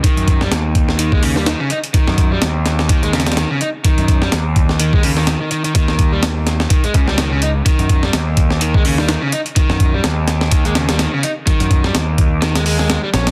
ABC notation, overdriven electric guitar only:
X:1
M:4/4
L:1/16
Q:"Swing 16ths" 1/4=126
K:Ebm
V:1 name="Overdriven electric guitar" clef=bass
E,3 =G, z4 E, A, D, G, E, D, E z | E,3 =G, z4 E, A, D, G, E, D, E z | E,3 =G, z4 E, A, D, E, E, E, E, E, | E,3 =G, z4 E, A, D, G, E, D, E z |
E,3 =G, z4 E, A, D, G, E, D, E z | E,3 =G, z4 E, A, D, G, E, D, E z | E,3 =G, z4 E, A, A, A, A, G, D z |]